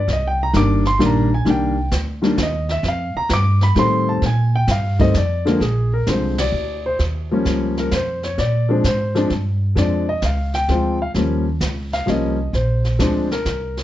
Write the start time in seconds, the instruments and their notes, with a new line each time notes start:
0.08 upright bass C2, brush sweep, kick, snare
0.13 grand piano D#5
0.27 grand piano G5
0.43 grand piano A#5
0.53 upright bass G1, grand piano D#3 G3 A#3 D4 D6, kick, snare, hi-hat pedal
0.85 grand piano C6, snare
0.99 upright bass A#1, grand piano D#3 G3 A#3 D4, kick, snare
1.05 grand piano A#5
1.34 grand piano G#5
1.45 upright bass C2, grand piano D#3 G3 A#3 D4, brush sweep, kick, snare
1.50 grand piano G5
1.91 upright bass D2, kick, snare, hi-hat pedal
2.22 grand piano D#3 G3 A#3 D4, snare
2.38 upright bass D#2, kick, snare, hi-hat pedal
2.43 grand piano D#5
2.69 grand piano E5, snare
2.83 upright bass F2, brush sweep, kick, snare
2.88 grand piano F5
3.15 grand piano A#5, muted upright bass stroke
3.29 upright bass G2, kick, snare, hi-hat pedal
3.34 grand piano D6
3.61 grand piano B5, snare
3.76 upright bass A2, grand piano D#3 G3 A3 C4 C6, kick, snare
4.09 grand piano A5
4.22 upright bass A#2, brush sweep, kick, snare
4.26 grand piano G#5
4.55 grand piano G5
4.68 upright bass G2, grand piano F5, kick, snare, hi-hat pedal
4.99 grand piano D#3 G3 A3 C4 D#5, kick, snare
5.14 upright bass F2, grand piano D5, kick, snare, hi-hat pedal
5.45 grand piano D3 F3 G#3 A#3, snare
5.60 upright bass A#1, grand piano G#4, brush sweep, kick, snare
5.93 grand piano A#4
6.07 upright bass C2, grand piano D3 F3 G#3 C4 C5, kick, snare, hi-hat pedal
6.38 grand piano D5, snare, ride
6.52 upright bass D2
6.86 grand piano C5
6.99 upright bass D#2, brush sweep, kick, snare
7.31 grand piano F3 G3 A#3 C#4
7.45 upright bass C#2, kick, snare, hi-hat pedal
7.77 grand piano A#4, snare
7.91 upright bass F2, grand piano C5, kick, snare, hi-hat pedal
8.23 grand piano C#5, snare
8.38 upright bass A#2, grand piano D5, brush sweep, kick, snare
8.69 grand piano F3 G#3 C4 D4
8.84 upright bass G#2, grand piano C5, kick, snare, hi-hat pedal
9.15 grand piano F3 G#3 C4 D4, snare
9.30 upright bass G2, kick, snare
9.75 upright bass F2, grand piano F3 G#3 C4 D4 D5, brush sweep, kick, snare
10.09 grand piano D#5
10.22 upright bass C#2, grand piano F5, kick, snare, hi-hat pedal
10.54 grand piano G5, snare
10.68 upright bass D2, grand piano F3 G#3 C4 F4, kick, snare
11.02 grand piano F5
11.14 upright bass D#2, grand piano F3 G3 A#3 C#4, brush sweep, kick, snare
11.61 upright bass C#2, kick, snare, hi-hat pedal
11.93 grand piano F5, snare
12.06 upright bass C2, grand piano F3 G3 A#3 C#4 D#5, kick, snare
12.53 upright bass A#1, grand piano C5, brush sweep, kick, snare
12.84 snare
12.99 upright bass D2, grand piano F3 G#3 C4 D4, kick, snare, hi-hat pedal
13.31 grand piano A#4, snare
13.45 upright bass C2, kick, snare, hi-hat pedal
13.77 snare